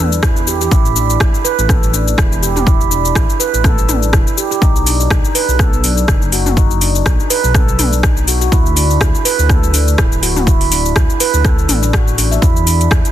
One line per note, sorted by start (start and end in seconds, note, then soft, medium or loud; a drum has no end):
0.00 0.68 E2 medium
0.00 0.11 D4 medium
0.12 shaker soft
0.23 0.35 E4 medium
0.23 kick loud
0.23 cross-stick loud
0.23 shaker soft
0.37 shaker soft
0.47 0.60 G4 medium
0.47 shaker medium
0.61 0.71 G4 medium
0.61 shaker soft
0.71 1.17 A1 loud
0.71 0.85 E4 loud
0.71 kick loud
0.71 shaker medium
0.86 shaker soft
0.96 1.08 D4 medium
0.96 shaker loud
1.10 shaker soft
1.20 1.31 A1 loud
1.20 kick loud
1.20 cross-stick loud
1.20 shaker medium
1.34 shaker soft
1.45 1.57 B4 loud
1.45 shaker medium
1.59 2.15 A1 loud
1.59 shaker soft
1.69 1.82 A4 medium
1.69 kick loud
1.69 cross-stick medium
1.69 mid tom medium
1.69 shaker medium
1.83 shaker soft
1.93 2.06 D4 medium
1.93 shaker medium
2.08 shaker soft
2.18 3.12 E1 medium
2.18 2.30 E4 medium
2.18 kick loud
2.18 cross-stick loud
2.18 shaker medium
2.32 shaker soft
2.42 2.55 G4 medium
2.42 shaker medium
2.56 2.66 G4 medium
2.56 mid tom medium
2.56 shaker soft
2.66 2.80 E4 loud
2.66 kick loud
2.66 shaker medium
2.81 shaker soft
2.91 3.03 D4 medium
2.91 shaker medium
3.05 shaker soft
3.15 3.27 A1 loud
3.15 kick loud
3.15 cross-stick medium
3.15 shaker medium
3.30 shaker soft
3.40 3.52 B4 medium
3.40 shaker medium
3.54 3.86 A1 medium
3.54 shaker soft
3.64 3.77 A4 medium
3.64 kick loud
3.64 cross-stick medium
3.64 mid tom medium
3.64 shaker medium
3.78 shaker soft
3.89 4.14 A1 medium
3.89 4.01 D4 medium
3.89 mid tom medium
3.89 shaker medium
4.03 shaker soft
4.13 4.24 E1 medium
4.13 4.25 E4 medium
4.13 kick loud
4.13 cross-stick medium
4.13 shaker medium
4.27 shaker soft
4.37 4.50 G4 medium
4.37 shaker medium
4.51 4.61 G4 medium
4.51 shaker soft
4.62 5.07 B1 loud
4.62 4.75 D#4 loud
4.62 kick loud
4.62 shaker soft
4.76 shaker soft
4.86 4.99 D4 medium
4.86 open hi-hat medium
4.86 shaker medium
5.00 shaker soft
5.10 5.22 B1 loud
5.10 5.23 D#4 medium
5.10 kick loud
5.10 cross-stick loud
5.10 shaker soft
5.25 shaker soft
5.35 5.47 B4 medium
5.35 open hi-hat medium
5.35 shaker medium
5.49 6.05 B1 loud
5.49 shaker soft
5.59 5.72 A4 medium
5.59 kick loud
5.59 cross-stick medium
5.59 mid tom medium
5.59 shaker medium
5.73 shaker soft
5.84 5.96 D4 medium
5.84 open hi-hat medium
5.84 shaker medium
5.97 shaker soft
6.08 7.02 F#1 medium
6.08 kick loud
6.08 cross-stick medium
6.08 shaker soft
6.22 shaker soft
6.32 6.45 F#4 medium
6.32 open hi-hat medium
6.32 shaker medium
6.46 6.57 F#4 medium
6.46 mid tom medium
6.46 shaker soft
6.57 6.70 D#4 loud
6.57 kick loud
6.57 shaker soft
6.71 shaker soft
6.81 6.94 D4 medium
6.81 open hi-hat medium
6.81 shaker medium
6.95 shaker soft
7.06 7.17 B1 loud
7.06 7.18 D#4 medium
7.06 kick medium
7.06 cross-stick medium
7.06 shaker soft
7.20 shaker soft
7.30 7.43 B4 loud
7.30 open hi-hat medium
7.30 shaker medium
7.44 7.76 B1 medium
7.44 shaker soft
7.54 7.67 A4 medium
7.54 kick loud
7.54 cross-stick medium
7.54 mid tom medium
7.54 shaker soft
7.69 shaker soft
7.79 8.49 B1 medium
7.79 7.91 D4 medium
7.79 open hi-hat medium
7.79 mid tom medium
7.79 shaker medium
7.93 shaker soft
8.03 8.16 D#4 medium
8.03 kick loud
8.03 cross-stick loud
8.03 shaker soft
8.17 shaker soft
8.28 8.40 F#4 medium
8.28 open hi-hat medium
8.28 shaker medium
8.41 8.52 F#4 medium
8.41 shaker soft
8.52 8.98 D2 loud
8.52 8.65 E4 loud
8.52 kick loud
8.52 shaker soft
8.66 shaker soft
8.76 8.89 D4 medium
8.76 open hi-hat medium
8.76 shaker medium
8.90 shaker soft
9.01 9.12 D2 loud
9.01 9.13 E4 medium
9.01 kick medium
9.01 cross-stick loud
9.01 shaker soft
9.15 shaker soft
9.25 9.38 B4 loud
9.25 open hi-hat medium
9.25 shaker medium
9.39 9.95 D2 medium
9.39 shaker soft
9.49 9.62 A4 medium
9.49 kick loud
9.49 cross-stick medium
9.49 mid tom medium
9.49 shaker soft
9.63 shaker soft
9.74 9.86 D4 medium
9.74 open hi-hat medium
9.74 shaker medium
9.88 shaker soft
9.98 10.93 D1 medium
9.98 10.11 E4 medium
9.98 kick loud
9.98 cross-stick loud
9.98 shaker soft
10.12 shaker soft
10.23 10.35 F#4 medium
10.23 open hi-hat medium
10.23 shaker medium
10.37 10.47 F#4 medium
10.37 mid tom medium
10.37 shaker soft
10.47 10.60 E4 loud
10.47 kick loud
10.47 shaker soft
10.61 open hi-hat medium
10.61 shaker soft
10.72 10.84 D4 medium
10.72 open hi-hat medium
10.72 shaker medium
10.86 shaker soft
10.96 11.07 D2 loud
10.96 kick loud
10.96 cross-stick loud
10.96 shaker soft
11.10 shaker soft
11.20 11.33 B4 medium
11.20 open hi-hat loud
11.20 shaker medium
11.34 11.66 D2 loud
11.34 shaker soft
11.45 11.57 A4 medium
11.45 kick loud
11.45 cross-stick medium
11.45 mid tom medium
11.45 shaker soft
11.58 shaker soft
11.69 12.15 A1 medium
11.69 11.81 D4 medium
11.69 open hi-hat medium
11.69 mid tom medium
11.69 shaker medium
11.83 11.93 D4 medium
11.83 shaker soft
11.93 12.06 F#4 medium
11.93 kick loud
11.93 cross-stick loud
11.93 shaker soft
12.08 shaker soft
12.18 12.38 A1 medium
12.18 12.30 D4 medium
12.18 open hi-hat medium
12.18 shaker medium
12.31 12.41 E5 medium
12.31 shaker soft
12.42 12.88 E2 loud
12.42 12.55 E4 loud
12.42 kick loud
12.42 shaker soft
12.56 shaker soft
12.66 12.79 D4 medium
12.66 open hi-hat medium
12.66 shaker medium
12.81 closed hi-hat medium
12.81 shaker soft
12.91 13.02 E2 loud
12.91 13.03 E4 medium
12.91 kick loud
12.91 cross-stick loud
12.91 shaker medium
13.05 closed hi-hat soft
13.05 shaker soft